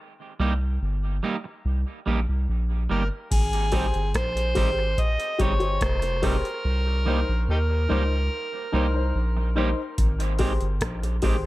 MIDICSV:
0, 0, Header, 1, 7, 480
1, 0, Start_track
1, 0, Key_signature, -4, "major"
1, 0, Tempo, 833333
1, 1907, Time_signature, 4, 2, 24, 8
1, 6602, End_track
2, 0, Start_track
2, 0, Title_t, "Harmonica"
2, 0, Program_c, 0, 22
2, 1678, Note_on_c, 0, 70, 84
2, 1770, Note_off_c, 0, 70, 0
2, 1915, Note_on_c, 0, 68, 102
2, 2369, Note_off_c, 0, 68, 0
2, 2397, Note_on_c, 0, 72, 114
2, 2883, Note_on_c, 0, 75, 115
2, 2891, Note_off_c, 0, 72, 0
2, 3120, Note_on_c, 0, 73, 99
2, 3129, Note_off_c, 0, 75, 0
2, 3365, Note_on_c, 0, 72, 101
2, 3374, Note_off_c, 0, 73, 0
2, 3596, Note_off_c, 0, 72, 0
2, 3602, Note_on_c, 0, 70, 113
2, 4292, Note_off_c, 0, 70, 0
2, 4324, Note_on_c, 0, 63, 69
2, 4324, Note_on_c, 0, 67, 69
2, 4324, Note_on_c, 0, 70, 99
2, 4359, Note_off_c, 0, 67, 0
2, 4363, Note_off_c, 0, 63, 0
2, 5492, Note_off_c, 0, 70, 0
2, 6602, End_track
3, 0, Start_track
3, 0, Title_t, "Grand piano"
3, 0, Program_c, 1, 0
3, 2144, Note_on_c, 1, 67, 86
3, 2147, Note_on_c, 1, 68, 75
3, 2151, Note_on_c, 1, 72, 90
3, 2273, Note_off_c, 1, 67, 0
3, 2274, Note_off_c, 1, 68, 0
3, 2276, Note_off_c, 1, 72, 0
3, 2509, Note_on_c, 1, 68, 23
3, 2511, Note_on_c, 1, 72, 27
3, 2557, Note_off_c, 1, 68, 0
3, 2557, Note_off_c, 1, 72, 0
3, 2620, Note_on_c, 1, 67, 87
3, 2624, Note_on_c, 1, 68, 79
3, 2627, Note_on_c, 1, 72, 98
3, 2751, Note_off_c, 1, 67, 0
3, 2753, Note_off_c, 1, 68, 0
3, 2754, Note_off_c, 1, 72, 0
3, 3102, Note_on_c, 1, 67, 82
3, 3105, Note_on_c, 1, 68, 83
3, 3108, Note_on_c, 1, 72, 97
3, 3216, Note_off_c, 1, 67, 0
3, 3219, Note_off_c, 1, 68, 0
3, 3224, Note_off_c, 1, 72, 0
3, 3225, Note_on_c, 1, 67, 75
3, 3228, Note_on_c, 1, 68, 67
3, 3233, Note_on_c, 1, 72, 82
3, 3349, Note_off_c, 1, 67, 0
3, 3351, Note_off_c, 1, 68, 0
3, 3353, Note_off_c, 1, 72, 0
3, 3585, Note_on_c, 1, 67, 89
3, 3589, Note_on_c, 1, 68, 83
3, 3590, Note_on_c, 1, 72, 101
3, 3713, Note_off_c, 1, 67, 0
3, 3715, Note_off_c, 1, 68, 0
3, 3716, Note_off_c, 1, 72, 0
3, 4063, Note_on_c, 1, 63, 82
3, 4066, Note_on_c, 1, 70, 78
3, 4069, Note_on_c, 1, 72, 92
3, 4192, Note_off_c, 1, 63, 0
3, 4194, Note_off_c, 1, 70, 0
3, 4195, Note_off_c, 1, 72, 0
3, 4429, Note_on_c, 1, 70, 23
3, 4430, Note_on_c, 1, 72, 28
3, 4477, Note_off_c, 1, 70, 0
3, 4477, Note_off_c, 1, 72, 0
3, 4542, Note_on_c, 1, 63, 90
3, 4547, Note_on_c, 1, 70, 81
3, 4549, Note_on_c, 1, 72, 104
3, 4672, Note_off_c, 1, 63, 0
3, 4674, Note_off_c, 1, 70, 0
3, 4675, Note_off_c, 1, 72, 0
3, 5025, Note_on_c, 1, 63, 90
3, 5028, Note_on_c, 1, 70, 82
3, 5031, Note_on_c, 1, 72, 100
3, 5139, Note_off_c, 1, 63, 0
3, 5143, Note_off_c, 1, 70, 0
3, 5145, Note_off_c, 1, 72, 0
3, 5148, Note_on_c, 1, 63, 73
3, 5151, Note_on_c, 1, 70, 68
3, 5154, Note_on_c, 1, 72, 81
3, 5271, Note_off_c, 1, 63, 0
3, 5272, Note_off_c, 1, 70, 0
3, 5274, Note_off_c, 1, 72, 0
3, 5503, Note_on_c, 1, 63, 97
3, 5507, Note_on_c, 1, 70, 88
3, 5510, Note_on_c, 1, 72, 106
3, 5632, Note_off_c, 1, 63, 0
3, 5634, Note_off_c, 1, 70, 0
3, 5636, Note_off_c, 1, 72, 0
3, 5985, Note_on_c, 1, 67, 91
3, 5989, Note_on_c, 1, 68, 79
3, 5993, Note_on_c, 1, 72, 96
3, 6113, Note_off_c, 1, 67, 0
3, 6115, Note_off_c, 1, 68, 0
3, 6117, Note_off_c, 1, 72, 0
3, 6351, Note_on_c, 1, 68, 24
3, 6351, Note_on_c, 1, 72, 25
3, 6397, Note_off_c, 1, 68, 0
3, 6397, Note_off_c, 1, 72, 0
3, 6465, Note_on_c, 1, 67, 91
3, 6468, Note_on_c, 1, 68, 88
3, 6471, Note_on_c, 1, 72, 103
3, 6593, Note_off_c, 1, 67, 0
3, 6594, Note_off_c, 1, 68, 0
3, 6596, Note_off_c, 1, 72, 0
3, 6602, End_track
4, 0, Start_track
4, 0, Title_t, "Clean electric guitar"
4, 0, Program_c, 2, 27
4, 228, Note_on_c, 2, 55, 85
4, 233, Note_on_c, 2, 58, 83
4, 236, Note_on_c, 2, 63, 90
4, 237, Note_on_c, 2, 67, 95
4, 297, Note_off_c, 2, 55, 0
4, 299, Note_off_c, 2, 58, 0
4, 301, Note_off_c, 2, 63, 0
4, 302, Note_off_c, 2, 67, 0
4, 708, Note_on_c, 2, 55, 82
4, 713, Note_on_c, 2, 58, 81
4, 715, Note_on_c, 2, 63, 89
4, 718, Note_on_c, 2, 67, 82
4, 777, Note_off_c, 2, 55, 0
4, 780, Note_off_c, 2, 58, 0
4, 781, Note_off_c, 2, 63, 0
4, 782, Note_off_c, 2, 67, 0
4, 1186, Note_on_c, 2, 55, 71
4, 1191, Note_on_c, 2, 58, 77
4, 1194, Note_on_c, 2, 63, 79
4, 1198, Note_on_c, 2, 67, 85
4, 1256, Note_off_c, 2, 55, 0
4, 1259, Note_off_c, 2, 58, 0
4, 1260, Note_off_c, 2, 63, 0
4, 1262, Note_off_c, 2, 67, 0
4, 1667, Note_on_c, 2, 55, 77
4, 1673, Note_on_c, 2, 58, 73
4, 1674, Note_on_c, 2, 63, 74
4, 1679, Note_on_c, 2, 67, 82
4, 1737, Note_off_c, 2, 55, 0
4, 1740, Note_off_c, 2, 58, 0
4, 1741, Note_off_c, 2, 63, 0
4, 1743, Note_off_c, 2, 67, 0
4, 2143, Note_on_c, 2, 55, 88
4, 2145, Note_on_c, 2, 60, 94
4, 2150, Note_on_c, 2, 63, 93
4, 2153, Note_on_c, 2, 67, 99
4, 2215, Note_off_c, 2, 55, 0
4, 2216, Note_off_c, 2, 60, 0
4, 2219, Note_off_c, 2, 63, 0
4, 2220, Note_off_c, 2, 67, 0
4, 2625, Note_on_c, 2, 55, 85
4, 2627, Note_on_c, 2, 60, 87
4, 2633, Note_on_c, 2, 63, 93
4, 2633, Note_on_c, 2, 67, 98
4, 2696, Note_off_c, 2, 55, 0
4, 2698, Note_off_c, 2, 60, 0
4, 2701, Note_off_c, 2, 63, 0
4, 2701, Note_off_c, 2, 67, 0
4, 3107, Note_on_c, 2, 55, 82
4, 3113, Note_on_c, 2, 60, 87
4, 3115, Note_on_c, 2, 63, 88
4, 3119, Note_on_c, 2, 67, 84
4, 3178, Note_off_c, 2, 55, 0
4, 3181, Note_off_c, 2, 60, 0
4, 3181, Note_off_c, 2, 63, 0
4, 3183, Note_off_c, 2, 67, 0
4, 3585, Note_on_c, 2, 55, 80
4, 3591, Note_on_c, 2, 60, 80
4, 3593, Note_on_c, 2, 63, 87
4, 3595, Note_on_c, 2, 67, 95
4, 3657, Note_off_c, 2, 55, 0
4, 3660, Note_off_c, 2, 60, 0
4, 3660, Note_off_c, 2, 63, 0
4, 3662, Note_off_c, 2, 67, 0
4, 4066, Note_on_c, 2, 55, 86
4, 4070, Note_on_c, 2, 58, 88
4, 4073, Note_on_c, 2, 63, 94
4, 4076, Note_on_c, 2, 67, 93
4, 4137, Note_off_c, 2, 55, 0
4, 4139, Note_off_c, 2, 58, 0
4, 4141, Note_off_c, 2, 63, 0
4, 4142, Note_off_c, 2, 67, 0
4, 4548, Note_on_c, 2, 55, 85
4, 4552, Note_on_c, 2, 58, 80
4, 4557, Note_on_c, 2, 63, 84
4, 4560, Note_on_c, 2, 67, 89
4, 4618, Note_off_c, 2, 55, 0
4, 4620, Note_off_c, 2, 58, 0
4, 4622, Note_off_c, 2, 63, 0
4, 4624, Note_off_c, 2, 67, 0
4, 5029, Note_on_c, 2, 55, 73
4, 5033, Note_on_c, 2, 58, 87
4, 5035, Note_on_c, 2, 63, 85
4, 5038, Note_on_c, 2, 67, 85
4, 5098, Note_off_c, 2, 55, 0
4, 5100, Note_off_c, 2, 58, 0
4, 5101, Note_off_c, 2, 63, 0
4, 5103, Note_off_c, 2, 67, 0
4, 5508, Note_on_c, 2, 55, 86
4, 5511, Note_on_c, 2, 58, 85
4, 5516, Note_on_c, 2, 63, 99
4, 5517, Note_on_c, 2, 67, 102
4, 5578, Note_off_c, 2, 55, 0
4, 5579, Note_off_c, 2, 58, 0
4, 5582, Note_off_c, 2, 63, 0
4, 5582, Note_off_c, 2, 67, 0
4, 5984, Note_on_c, 2, 51, 87
4, 5989, Note_on_c, 2, 56, 87
4, 5989, Note_on_c, 2, 60, 92
4, 5993, Note_on_c, 2, 67, 95
4, 6056, Note_off_c, 2, 51, 0
4, 6058, Note_off_c, 2, 56, 0
4, 6058, Note_off_c, 2, 60, 0
4, 6060, Note_off_c, 2, 67, 0
4, 6466, Note_on_c, 2, 51, 79
4, 6470, Note_on_c, 2, 56, 83
4, 6474, Note_on_c, 2, 60, 82
4, 6476, Note_on_c, 2, 67, 83
4, 6537, Note_off_c, 2, 51, 0
4, 6539, Note_off_c, 2, 56, 0
4, 6540, Note_off_c, 2, 60, 0
4, 6541, Note_off_c, 2, 67, 0
4, 6602, End_track
5, 0, Start_track
5, 0, Title_t, "Sub bass"
5, 0, Program_c, 3, 38
5, 226, Note_on_c, 3, 36, 87
5, 452, Note_off_c, 3, 36, 0
5, 471, Note_on_c, 3, 31, 86
5, 694, Note_off_c, 3, 31, 0
5, 950, Note_on_c, 3, 36, 96
5, 1064, Note_off_c, 3, 36, 0
5, 1191, Note_on_c, 3, 34, 89
5, 1304, Note_off_c, 3, 34, 0
5, 1317, Note_on_c, 3, 36, 85
5, 1424, Note_off_c, 3, 36, 0
5, 1433, Note_on_c, 3, 34, 84
5, 1656, Note_off_c, 3, 34, 0
5, 1673, Note_on_c, 3, 31, 89
5, 1786, Note_off_c, 3, 31, 0
5, 1910, Note_on_c, 3, 32, 99
5, 2250, Note_off_c, 3, 32, 0
5, 2276, Note_on_c, 3, 31, 90
5, 2383, Note_off_c, 3, 31, 0
5, 2390, Note_on_c, 3, 34, 91
5, 2614, Note_off_c, 3, 34, 0
5, 2630, Note_on_c, 3, 32, 94
5, 2854, Note_off_c, 3, 32, 0
5, 3110, Note_on_c, 3, 31, 88
5, 3334, Note_off_c, 3, 31, 0
5, 3349, Note_on_c, 3, 29, 96
5, 3689, Note_off_c, 3, 29, 0
5, 3828, Note_on_c, 3, 36, 106
5, 4169, Note_off_c, 3, 36, 0
5, 4197, Note_on_c, 3, 34, 90
5, 4304, Note_off_c, 3, 34, 0
5, 4311, Note_on_c, 3, 39, 94
5, 4535, Note_off_c, 3, 39, 0
5, 4554, Note_on_c, 3, 37, 102
5, 4777, Note_off_c, 3, 37, 0
5, 5030, Note_on_c, 3, 36, 91
5, 5254, Note_off_c, 3, 36, 0
5, 5271, Note_on_c, 3, 34, 90
5, 5610, Note_off_c, 3, 34, 0
5, 5751, Note_on_c, 3, 32, 107
5, 6090, Note_off_c, 3, 32, 0
5, 6114, Note_on_c, 3, 31, 84
5, 6222, Note_off_c, 3, 31, 0
5, 6229, Note_on_c, 3, 34, 95
5, 6453, Note_off_c, 3, 34, 0
5, 6470, Note_on_c, 3, 32, 94
5, 6602, Note_off_c, 3, 32, 0
5, 6602, End_track
6, 0, Start_track
6, 0, Title_t, "Muted clean electric guitar strokes"
6, 831, Note_on_c, 9, 29, 38
6, 888, Note_off_c, 9, 29, 0
6, 3470, Note_on_c, 9, 29, 51
6, 3528, Note_off_c, 9, 29, 0
6, 5395, Note_on_c, 9, 29, 44
6, 5453, Note_off_c, 9, 29, 0
6, 6602, End_track
7, 0, Start_track
7, 0, Title_t, "Drums"
7, 1908, Note_on_c, 9, 36, 111
7, 1910, Note_on_c, 9, 42, 100
7, 1910, Note_on_c, 9, 49, 93
7, 1966, Note_off_c, 9, 36, 0
7, 1968, Note_off_c, 9, 42, 0
7, 1968, Note_off_c, 9, 49, 0
7, 2034, Note_on_c, 9, 42, 50
7, 2092, Note_off_c, 9, 42, 0
7, 2141, Note_on_c, 9, 46, 53
7, 2148, Note_on_c, 9, 36, 88
7, 2199, Note_off_c, 9, 46, 0
7, 2206, Note_off_c, 9, 36, 0
7, 2269, Note_on_c, 9, 42, 33
7, 2326, Note_off_c, 9, 42, 0
7, 2387, Note_on_c, 9, 42, 94
7, 2388, Note_on_c, 9, 36, 104
7, 2393, Note_on_c, 9, 37, 117
7, 2445, Note_off_c, 9, 36, 0
7, 2445, Note_off_c, 9, 42, 0
7, 2451, Note_off_c, 9, 37, 0
7, 2516, Note_on_c, 9, 42, 62
7, 2574, Note_off_c, 9, 42, 0
7, 2623, Note_on_c, 9, 46, 74
7, 2628, Note_on_c, 9, 36, 95
7, 2680, Note_off_c, 9, 46, 0
7, 2686, Note_off_c, 9, 36, 0
7, 2867, Note_on_c, 9, 36, 114
7, 2869, Note_on_c, 9, 42, 73
7, 2925, Note_off_c, 9, 36, 0
7, 2926, Note_off_c, 9, 42, 0
7, 2993, Note_on_c, 9, 42, 52
7, 3051, Note_off_c, 9, 42, 0
7, 3107, Note_on_c, 9, 36, 97
7, 3108, Note_on_c, 9, 42, 84
7, 3165, Note_off_c, 9, 36, 0
7, 3165, Note_off_c, 9, 42, 0
7, 3228, Note_on_c, 9, 42, 32
7, 3285, Note_off_c, 9, 42, 0
7, 3346, Note_on_c, 9, 42, 82
7, 3348, Note_on_c, 9, 36, 115
7, 3354, Note_on_c, 9, 37, 116
7, 3404, Note_off_c, 9, 42, 0
7, 3405, Note_off_c, 9, 36, 0
7, 3412, Note_off_c, 9, 37, 0
7, 3469, Note_on_c, 9, 42, 55
7, 3526, Note_off_c, 9, 42, 0
7, 3588, Note_on_c, 9, 46, 66
7, 3589, Note_on_c, 9, 36, 88
7, 3645, Note_off_c, 9, 46, 0
7, 3647, Note_off_c, 9, 36, 0
7, 3716, Note_on_c, 9, 42, 34
7, 3773, Note_off_c, 9, 42, 0
7, 5749, Note_on_c, 9, 36, 110
7, 5749, Note_on_c, 9, 42, 103
7, 5806, Note_off_c, 9, 36, 0
7, 5807, Note_off_c, 9, 42, 0
7, 5875, Note_on_c, 9, 42, 54
7, 5933, Note_off_c, 9, 42, 0
7, 5982, Note_on_c, 9, 46, 50
7, 5989, Note_on_c, 9, 36, 87
7, 6040, Note_off_c, 9, 46, 0
7, 6047, Note_off_c, 9, 36, 0
7, 6109, Note_on_c, 9, 42, 34
7, 6167, Note_off_c, 9, 42, 0
7, 6226, Note_on_c, 9, 42, 83
7, 6227, Note_on_c, 9, 36, 110
7, 6231, Note_on_c, 9, 37, 122
7, 6283, Note_off_c, 9, 42, 0
7, 6285, Note_off_c, 9, 36, 0
7, 6289, Note_off_c, 9, 37, 0
7, 6356, Note_on_c, 9, 42, 64
7, 6413, Note_off_c, 9, 42, 0
7, 6462, Note_on_c, 9, 46, 77
7, 6469, Note_on_c, 9, 36, 96
7, 6520, Note_off_c, 9, 46, 0
7, 6526, Note_off_c, 9, 36, 0
7, 6602, End_track
0, 0, End_of_file